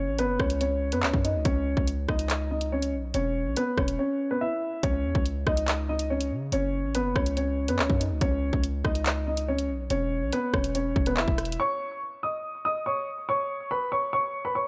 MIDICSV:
0, 0, Header, 1, 4, 480
1, 0, Start_track
1, 0, Key_signature, 4, "minor"
1, 0, Tempo, 422535
1, 1651, Time_signature, 4, 2, 24, 8
1, 16673, End_track
2, 0, Start_track
2, 0, Title_t, "Grand piano"
2, 0, Program_c, 0, 0
2, 0, Note_on_c, 0, 61, 76
2, 0, Note_on_c, 0, 73, 98
2, 184, Note_off_c, 0, 73, 0
2, 189, Note_off_c, 0, 61, 0
2, 214, Note_on_c, 0, 71, 91
2, 224, Note_on_c, 0, 59, 73
2, 439, Note_off_c, 0, 71, 0
2, 444, Note_off_c, 0, 59, 0
2, 453, Note_on_c, 0, 73, 85
2, 462, Note_on_c, 0, 61, 65
2, 675, Note_off_c, 0, 73, 0
2, 684, Note_off_c, 0, 61, 0
2, 692, Note_on_c, 0, 73, 89
2, 702, Note_on_c, 0, 61, 69
2, 1030, Note_off_c, 0, 73, 0
2, 1035, Note_off_c, 0, 61, 0
2, 1053, Note_on_c, 0, 71, 76
2, 1063, Note_on_c, 0, 59, 59
2, 1165, Note_off_c, 0, 71, 0
2, 1170, Note_off_c, 0, 59, 0
2, 1173, Note_on_c, 0, 73, 78
2, 1182, Note_on_c, 0, 61, 62
2, 1398, Note_off_c, 0, 73, 0
2, 1403, Note_off_c, 0, 61, 0
2, 1407, Note_on_c, 0, 75, 68
2, 1417, Note_on_c, 0, 63, 59
2, 1636, Note_off_c, 0, 75, 0
2, 1641, Note_off_c, 0, 63, 0
2, 1650, Note_on_c, 0, 73, 96
2, 1659, Note_on_c, 0, 61, 81
2, 2101, Note_off_c, 0, 73, 0
2, 2106, Note_off_c, 0, 61, 0
2, 2366, Note_on_c, 0, 75, 83
2, 2375, Note_on_c, 0, 63, 64
2, 2819, Note_off_c, 0, 75, 0
2, 2824, Note_off_c, 0, 63, 0
2, 2850, Note_on_c, 0, 75, 74
2, 2859, Note_on_c, 0, 63, 56
2, 3077, Note_off_c, 0, 75, 0
2, 3082, Note_off_c, 0, 63, 0
2, 3094, Note_on_c, 0, 73, 82
2, 3103, Note_on_c, 0, 61, 66
2, 3319, Note_off_c, 0, 73, 0
2, 3324, Note_off_c, 0, 61, 0
2, 3573, Note_on_c, 0, 73, 92
2, 3582, Note_on_c, 0, 61, 70
2, 4023, Note_off_c, 0, 73, 0
2, 4028, Note_off_c, 0, 61, 0
2, 4054, Note_on_c, 0, 71, 86
2, 4063, Note_on_c, 0, 59, 68
2, 4279, Note_off_c, 0, 71, 0
2, 4284, Note_off_c, 0, 59, 0
2, 4291, Note_on_c, 0, 73, 79
2, 4300, Note_on_c, 0, 61, 60
2, 4516, Note_off_c, 0, 73, 0
2, 4522, Note_off_c, 0, 61, 0
2, 4533, Note_on_c, 0, 73, 87
2, 4542, Note_on_c, 0, 61, 71
2, 4870, Note_off_c, 0, 73, 0
2, 4875, Note_off_c, 0, 61, 0
2, 4894, Note_on_c, 0, 71, 77
2, 4904, Note_on_c, 0, 59, 65
2, 5006, Note_off_c, 0, 71, 0
2, 5011, Note_off_c, 0, 59, 0
2, 5012, Note_on_c, 0, 76, 84
2, 5021, Note_on_c, 0, 64, 62
2, 5462, Note_off_c, 0, 76, 0
2, 5467, Note_off_c, 0, 64, 0
2, 5493, Note_on_c, 0, 73, 111
2, 5502, Note_on_c, 0, 61, 87
2, 5943, Note_off_c, 0, 73, 0
2, 5948, Note_off_c, 0, 61, 0
2, 6216, Note_on_c, 0, 75, 82
2, 6225, Note_on_c, 0, 63, 64
2, 6664, Note_off_c, 0, 75, 0
2, 6669, Note_off_c, 0, 63, 0
2, 6692, Note_on_c, 0, 75, 89
2, 6701, Note_on_c, 0, 63, 68
2, 6918, Note_off_c, 0, 75, 0
2, 6923, Note_off_c, 0, 63, 0
2, 6931, Note_on_c, 0, 73, 84
2, 6940, Note_on_c, 0, 61, 64
2, 7158, Note_off_c, 0, 73, 0
2, 7162, Note_off_c, 0, 61, 0
2, 7416, Note_on_c, 0, 73, 96
2, 7424, Note_on_c, 0, 61, 76
2, 7864, Note_off_c, 0, 73, 0
2, 7869, Note_off_c, 0, 61, 0
2, 7894, Note_on_c, 0, 71, 93
2, 7903, Note_on_c, 0, 59, 73
2, 8119, Note_off_c, 0, 71, 0
2, 8124, Note_off_c, 0, 59, 0
2, 8132, Note_on_c, 0, 73, 88
2, 8141, Note_on_c, 0, 61, 67
2, 8356, Note_off_c, 0, 73, 0
2, 8363, Note_off_c, 0, 61, 0
2, 8373, Note_on_c, 0, 73, 91
2, 8382, Note_on_c, 0, 61, 68
2, 8710, Note_off_c, 0, 73, 0
2, 8715, Note_off_c, 0, 61, 0
2, 8732, Note_on_c, 0, 71, 78
2, 8742, Note_on_c, 0, 59, 60
2, 8845, Note_off_c, 0, 71, 0
2, 8850, Note_off_c, 0, 59, 0
2, 8852, Note_on_c, 0, 73, 81
2, 8862, Note_on_c, 0, 61, 61
2, 9078, Note_off_c, 0, 73, 0
2, 9083, Note_off_c, 0, 61, 0
2, 9088, Note_on_c, 0, 75, 71
2, 9097, Note_on_c, 0, 63, 59
2, 9316, Note_off_c, 0, 75, 0
2, 9321, Note_off_c, 0, 63, 0
2, 9332, Note_on_c, 0, 73, 99
2, 9340, Note_on_c, 0, 61, 80
2, 9782, Note_off_c, 0, 73, 0
2, 9787, Note_off_c, 0, 61, 0
2, 10045, Note_on_c, 0, 75, 83
2, 10054, Note_on_c, 0, 63, 63
2, 10499, Note_off_c, 0, 75, 0
2, 10504, Note_off_c, 0, 63, 0
2, 10529, Note_on_c, 0, 75, 74
2, 10539, Note_on_c, 0, 63, 56
2, 10757, Note_off_c, 0, 75, 0
2, 10762, Note_off_c, 0, 63, 0
2, 10774, Note_on_c, 0, 73, 83
2, 10783, Note_on_c, 0, 61, 68
2, 10999, Note_off_c, 0, 73, 0
2, 11004, Note_off_c, 0, 61, 0
2, 11253, Note_on_c, 0, 73, 96
2, 11262, Note_on_c, 0, 61, 70
2, 11703, Note_off_c, 0, 73, 0
2, 11708, Note_off_c, 0, 61, 0
2, 11733, Note_on_c, 0, 71, 91
2, 11742, Note_on_c, 0, 59, 68
2, 11959, Note_off_c, 0, 71, 0
2, 11964, Note_off_c, 0, 59, 0
2, 11971, Note_on_c, 0, 73, 82
2, 11980, Note_on_c, 0, 61, 62
2, 12196, Note_off_c, 0, 73, 0
2, 12202, Note_off_c, 0, 61, 0
2, 12213, Note_on_c, 0, 73, 90
2, 12222, Note_on_c, 0, 61, 70
2, 12550, Note_off_c, 0, 73, 0
2, 12555, Note_off_c, 0, 61, 0
2, 12574, Note_on_c, 0, 71, 81
2, 12583, Note_on_c, 0, 59, 67
2, 12686, Note_off_c, 0, 71, 0
2, 12691, Note_off_c, 0, 59, 0
2, 12692, Note_on_c, 0, 76, 84
2, 12700, Note_on_c, 0, 64, 63
2, 13142, Note_off_c, 0, 76, 0
2, 13147, Note_off_c, 0, 64, 0
2, 13174, Note_on_c, 0, 85, 115
2, 13182, Note_on_c, 0, 73, 88
2, 13623, Note_off_c, 0, 85, 0
2, 13628, Note_off_c, 0, 73, 0
2, 13895, Note_on_c, 0, 87, 80
2, 13905, Note_on_c, 0, 75, 65
2, 14344, Note_off_c, 0, 87, 0
2, 14349, Note_off_c, 0, 75, 0
2, 14371, Note_on_c, 0, 87, 89
2, 14381, Note_on_c, 0, 75, 70
2, 14597, Note_off_c, 0, 87, 0
2, 14603, Note_off_c, 0, 75, 0
2, 14610, Note_on_c, 0, 85, 85
2, 14619, Note_on_c, 0, 73, 66
2, 14837, Note_off_c, 0, 85, 0
2, 14842, Note_off_c, 0, 73, 0
2, 15094, Note_on_c, 0, 85, 99
2, 15104, Note_on_c, 0, 73, 76
2, 15544, Note_off_c, 0, 85, 0
2, 15549, Note_off_c, 0, 73, 0
2, 15574, Note_on_c, 0, 83, 96
2, 15582, Note_on_c, 0, 71, 72
2, 15799, Note_off_c, 0, 83, 0
2, 15804, Note_off_c, 0, 71, 0
2, 15812, Note_on_c, 0, 85, 91
2, 15821, Note_on_c, 0, 73, 67
2, 16036, Note_off_c, 0, 85, 0
2, 16043, Note_off_c, 0, 73, 0
2, 16053, Note_on_c, 0, 85, 94
2, 16061, Note_on_c, 0, 73, 68
2, 16390, Note_off_c, 0, 85, 0
2, 16394, Note_off_c, 0, 73, 0
2, 16413, Note_on_c, 0, 83, 80
2, 16422, Note_on_c, 0, 71, 62
2, 16525, Note_off_c, 0, 83, 0
2, 16530, Note_off_c, 0, 71, 0
2, 16532, Note_on_c, 0, 85, 81
2, 16541, Note_on_c, 0, 73, 61
2, 16673, Note_off_c, 0, 73, 0
2, 16673, Note_off_c, 0, 85, 0
2, 16673, End_track
3, 0, Start_track
3, 0, Title_t, "808-style bass"
3, 0, Program_c, 1, 38
3, 90, Note_on_c, 1, 33, 94
3, 270, Note_on_c, 1, 30, 98
3, 287, Note_off_c, 1, 33, 0
3, 441, Note_off_c, 1, 30, 0
3, 449, Note_on_c, 1, 37, 110
3, 1050, Note_on_c, 1, 42, 99
3, 1067, Note_off_c, 1, 37, 0
3, 1170, Note_on_c, 1, 37, 104
3, 1187, Note_off_c, 1, 42, 0
3, 1284, Note_off_c, 1, 37, 0
3, 1290, Note_on_c, 1, 42, 106
3, 1530, Note_on_c, 1, 37, 98
3, 1547, Note_off_c, 1, 42, 0
3, 1644, Note_off_c, 1, 37, 0
3, 1651, Note_on_c, 1, 37, 112
3, 1996, Note_off_c, 1, 37, 0
3, 2010, Note_on_c, 1, 37, 102
3, 2356, Note_off_c, 1, 37, 0
3, 2369, Note_on_c, 1, 37, 106
3, 3331, Note_on_c, 1, 35, 103
3, 3348, Note_off_c, 1, 37, 0
3, 3559, Note_off_c, 1, 35, 0
3, 3571, Note_on_c, 1, 28, 112
3, 3931, Note_on_c, 1, 35, 99
3, 3948, Note_off_c, 1, 28, 0
3, 4045, Note_off_c, 1, 35, 0
3, 4289, Note_on_c, 1, 28, 104
3, 4520, Note_off_c, 1, 28, 0
3, 5491, Note_on_c, 1, 37, 112
3, 5731, Note_on_c, 1, 40, 97
3, 5748, Note_off_c, 1, 37, 0
3, 5844, Note_off_c, 1, 40, 0
3, 5851, Note_on_c, 1, 37, 99
3, 6196, Note_off_c, 1, 37, 0
3, 6210, Note_on_c, 1, 37, 103
3, 7170, Note_on_c, 1, 49, 98
3, 7187, Note_off_c, 1, 37, 0
3, 7398, Note_off_c, 1, 49, 0
3, 7409, Note_on_c, 1, 30, 107
3, 7771, Note_on_c, 1, 33, 95
3, 7788, Note_off_c, 1, 30, 0
3, 7950, Note_on_c, 1, 30, 100
3, 7967, Note_off_c, 1, 33, 0
3, 8121, Note_off_c, 1, 30, 0
3, 8130, Note_on_c, 1, 37, 106
3, 8731, Note_on_c, 1, 42, 101
3, 8748, Note_off_c, 1, 37, 0
3, 8850, Note_on_c, 1, 37, 103
3, 8867, Note_off_c, 1, 42, 0
3, 8964, Note_off_c, 1, 37, 0
3, 8970, Note_on_c, 1, 42, 111
3, 9210, Note_on_c, 1, 37, 96
3, 9227, Note_off_c, 1, 42, 0
3, 9324, Note_off_c, 1, 37, 0
3, 9331, Note_on_c, 1, 37, 113
3, 9676, Note_off_c, 1, 37, 0
3, 9690, Note_on_c, 1, 37, 102
3, 10036, Note_off_c, 1, 37, 0
3, 10049, Note_on_c, 1, 37, 106
3, 11010, Note_on_c, 1, 35, 101
3, 11027, Note_off_c, 1, 37, 0
3, 11238, Note_off_c, 1, 35, 0
3, 11250, Note_on_c, 1, 28, 110
3, 11610, Note_on_c, 1, 35, 102
3, 11628, Note_off_c, 1, 28, 0
3, 11724, Note_off_c, 1, 35, 0
3, 11969, Note_on_c, 1, 28, 104
3, 12431, Note_off_c, 1, 28, 0
3, 12450, Note_on_c, 1, 28, 107
3, 12691, Note_on_c, 1, 30, 99
3, 12708, Note_off_c, 1, 28, 0
3, 12805, Note_off_c, 1, 30, 0
3, 12810, Note_on_c, 1, 28, 104
3, 13156, Note_off_c, 1, 28, 0
3, 16673, End_track
4, 0, Start_track
4, 0, Title_t, "Drums"
4, 211, Note_on_c, 9, 42, 86
4, 324, Note_off_c, 9, 42, 0
4, 449, Note_on_c, 9, 36, 90
4, 451, Note_on_c, 9, 37, 100
4, 563, Note_off_c, 9, 36, 0
4, 564, Note_off_c, 9, 37, 0
4, 568, Note_on_c, 9, 42, 75
4, 682, Note_off_c, 9, 42, 0
4, 691, Note_on_c, 9, 42, 81
4, 804, Note_off_c, 9, 42, 0
4, 1046, Note_on_c, 9, 42, 77
4, 1160, Note_off_c, 9, 42, 0
4, 1169, Note_on_c, 9, 39, 126
4, 1282, Note_off_c, 9, 39, 0
4, 1290, Note_on_c, 9, 36, 90
4, 1404, Note_off_c, 9, 36, 0
4, 1416, Note_on_c, 9, 42, 81
4, 1530, Note_off_c, 9, 42, 0
4, 1648, Note_on_c, 9, 42, 85
4, 1650, Note_on_c, 9, 36, 123
4, 1762, Note_off_c, 9, 42, 0
4, 1764, Note_off_c, 9, 36, 0
4, 2010, Note_on_c, 9, 36, 95
4, 2124, Note_off_c, 9, 36, 0
4, 2130, Note_on_c, 9, 42, 83
4, 2243, Note_off_c, 9, 42, 0
4, 2369, Note_on_c, 9, 36, 92
4, 2370, Note_on_c, 9, 37, 100
4, 2483, Note_off_c, 9, 36, 0
4, 2484, Note_off_c, 9, 37, 0
4, 2488, Note_on_c, 9, 42, 78
4, 2602, Note_off_c, 9, 42, 0
4, 2610, Note_on_c, 9, 39, 102
4, 2611, Note_on_c, 9, 42, 78
4, 2723, Note_off_c, 9, 39, 0
4, 2724, Note_off_c, 9, 42, 0
4, 2966, Note_on_c, 9, 42, 80
4, 3079, Note_off_c, 9, 42, 0
4, 3208, Note_on_c, 9, 42, 76
4, 3322, Note_off_c, 9, 42, 0
4, 3568, Note_on_c, 9, 42, 90
4, 3682, Note_off_c, 9, 42, 0
4, 4050, Note_on_c, 9, 42, 84
4, 4163, Note_off_c, 9, 42, 0
4, 4289, Note_on_c, 9, 36, 93
4, 4290, Note_on_c, 9, 37, 96
4, 4403, Note_off_c, 9, 36, 0
4, 4403, Note_off_c, 9, 37, 0
4, 4408, Note_on_c, 9, 42, 77
4, 4521, Note_off_c, 9, 42, 0
4, 5490, Note_on_c, 9, 42, 86
4, 5491, Note_on_c, 9, 36, 121
4, 5603, Note_off_c, 9, 42, 0
4, 5604, Note_off_c, 9, 36, 0
4, 5851, Note_on_c, 9, 36, 98
4, 5964, Note_off_c, 9, 36, 0
4, 5971, Note_on_c, 9, 42, 82
4, 6085, Note_off_c, 9, 42, 0
4, 6210, Note_on_c, 9, 36, 96
4, 6211, Note_on_c, 9, 37, 101
4, 6324, Note_off_c, 9, 36, 0
4, 6325, Note_off_c, 9, 37, 0
4, 6329, Note_on_c, 9, 42, 78
4, 6443, Note_off_c, 9, 42, 0
4, 6451, Note_on_c, 9, 39, 107
4, 6452, Note_on_c, 9, 42, 79
4, 6565, Note_off_c, 9, 39, 0
4, 6566, Note_off_c, 9, 42, 0
4, 6807, Note_on_c, 9, 42, 81
4, 6921, Note_off_c, 9, 42, 0
4, 7050, Note_on_c, 9, 42, 76
4, 7164, Note_off_c, 9, 42, 0
4, 7410, Note_on_c, 9, 42, 89
4, 7523, Note_off_c, 9, 42, 0
4, 7891, Note_on_c, 9, 42, 84
4, 8005, Note_off_c, 9, 42, 0
4, 8130, Note_on_c, 9, 36, 95
4, 8132, Note_on_c, 9, 37, 99
4, 8243, Note_off_c, 9, 36, 0
4, 8245, Note_off_c, 9, 37, 0
4, 8250, Note_on_c, 9, 42, 76
4, 8363, Note_off_c, 9, 42, 0
4, 8372, Note_on_c, 9, 42, 78
4, 8485, Note_off_c, 9, 42, 0
4, 8728, Note_on_c, 9, 42, 75
4, 8841, Note_off_c, 9, 42, 0
4, 8850, Note_on_c, 9, 39, 125
4, 8963, Note_off_c, 9, 39, 0
4, 8970, Note_on_c, 9, 36, 91
4, 9084, Note_off_c, 9, 36, 0
4, 9098, Note_on_c, 9, 42, 80
4, 9211, Note_off_c, 9, 42, 0
4, 9329, Note_on_c, 9, 42, 91
4, 9330, Note_on_c, 9, 36, 119
4, 9443, Note_off_c, 9, 42, 0
4, 9444, Note_off_c, 9, 36, 0
4, 9690, Note_on_c, 9, 36, 97
4, 9804, Note_off_c, 9, 36, 0
4, 9810, Note_on_c, 9, 42, 86
4, 9924, Note_off_c, 9, 42, 0
4, 10049, Note_on_c, 9, 36, 95
4, 10050, Note_on_c, 9, 37, 104
4, 10163, Note_off_c, 9, 36, 0
4, 10164, Note_off_c, 9, 37, 0
4, 10169, Note_on_c, 9, 42, 77
4, 10283, Note_off_c, 9, 42, 0
4, 10290, Note_on_c, 9, 39, 104
4, 10291, Note_on_c, 9, 42, 79
4, 10404, Note_off_c, 9, 39, 0
4, 10405, Note_off_c, 9, 42, 0
4, 10646, Note_on_c, 9, 42, 76
4, 10760, Note_off_c, 9, 42, 0
4, 10889, Note_on_c, 9, 42, 76
4, 11003, Note_off_c, 9, 42, 0
4, 11249, Note_on_c, 9, 42, 87
4, 11363, Note_off_c, 9, 42, 0
4, 11730, Note_on_c, 9, 42, 83
4, 11843, Note_off_c, 9, 42, 0
4, 11969, Note_on_c, 9, 36, 92
4, 11970, Note_on_c, 9, 37, 102
4, 12083, Note_off_c, 9, 36, 0
4, 12084, Note_off_c, 9, 37, 0
4, 12088, Note_on_c, 9, 42, 74
4, 12202, Note_off_c, 9, 42, 0
4, 12211, Note_on_c, 9, 42, 78
4, 12324, Note_off_c, 9, 42, 0
4, 12450, Note_on_c, 9, 36, 97
4, 12564, Note_off_c, 9, 36, 0
4, 12567, Note_on_c, 9, 42, 77
4, 12680, Note_off_c, 9, 42, 0
4, 12689, Note_on_c, 9, 39, 123
4, 12803, Note_off_c, 9, 39, 0
4, 12810, Note_on_c, 9, 36, 91
4, 12924, Note_off_c, 9, 36, 0
4, 12930, Note_on_c, 9, 37, 85
4, 12931, Note_on_c, 9, 42, 66
4, 13010, Note_off_c, 9, 42, 0
4, 13010, Note_on_c, 9, 42, 66
4, 13043, Note_off_c, 9, 37, 0
4, 13090, Note_off_c, 9, 42, 0
4, 13090, Note_on_c, 9, 42, 74
4, 13204, Note_off_c, 9, 42, 0
4, 16673, End_track
0, 0, End_of_file